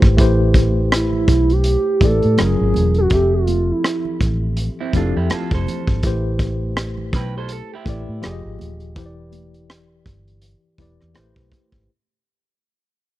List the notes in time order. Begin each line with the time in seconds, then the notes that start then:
Already playing: A3 E4 G4 B4 C5
0.02 G#1, kick, cross-stick
0.17 A1 A3 E4 G4 B4 C5, kick, closed hi-hat
0.54 kick, closed hi-hat, muted conga, high conga
0.92 E4, cross-stick, closed hi-hat, muted conga
1.13 low conga
1.28 B1, kick, closed hi-hat, muted conga, low conga
1.50 G4, closed hi-hat
1.64 closed hi-hat
2.01 A1 A3 E4 G4 B4 D5, kick, closed hi-hat, muted conga, high conga
2.05 A4
2.22 A2, closed hi-hat
2.37 F#1 F#3 C#4 F4 G#4 A#4, cross-stick, closed hi-hat, muted conga, high conga
2.61 G#1
2.74 E1, closed hi-hat, muted conga, high conga, low conga
2.94 F#4, closed hi-hat
3.10 F1 F3 C4 G4 E5, kick, closed hi-hat
3.14 A4
3.34 F4
3.47 closed hi-hat, muted conga, high conga
3.71 E4
3.84 cross-stick, closed hi-hat
4.05 low conga
4.20 A1, kick, closed hi-hat, muted conga, low conga
4.57 closed hi-hat, muted conga
4.81 C4 E4
4.93 F1 F3 C4 D4 E4 F4 G4, kick, closed hi-hat, muted conga, high conga
4.97 A4
5.17 F2 E4 G4
5.30 F4 A4, muted fingered electric bass stroke, cross-stick, closed hi-hat, high conga
5.51 F1 A4 C5, kick
5.67 closed hi-hat, high conga, low conga
5.87 G#1, kick
6.03 A1 A3 E4 G4 B4, kick, closed hi-hat
6.07 C5
6.39 kick, closed hi-hat, high conga
6.77 cross-stick, closed hi-hat
6.98 low conga
7.13 B1 G4 B4, kick, closed hi-hat, muted conga, low conga
7.38 A4 C5
7.49 A4, closed hi-hat
7.74 E4 G4
7.86 A1 A3 E4 G4 B4 D5, kick, closed hi-hat, high conga
8.09 A2
8.21 F1 F3 F4 G4 G#4 D5, cross-stick, closed hi-hat, muted conga, high conga
8.31 D#5
8.45 G#1
8.59 D#1, closed hi-hat, muted conga, high conga, low conga
8.80 closed hi-hat
8.96 E1 E3 E4 G4 B4 C5, kick, closed hi-hat
9.06 D5
9.32 closed hi-hat, high conga
9.54 closed hi-hat
9.70 cross-stick, closed hi-hat, muted conga
10.06 G1, kick, closed hi-hat, muted conga, low conga
10.28 closed hi-hat
10.42 closed hi-hat
10.78 E1 E3 E4 G4 B4 D5, kick, closed hi-hat, high conga
11.01 E2, cross-stick
11.14 A1 A3 E4 G4 B4 C5, cross-stick, closed hi-hat, muted conga, high conga
11.36 B1, kick
11.51 kick, closed hi-hat, muted conga, high conga, low conga
11.72 G#1, kick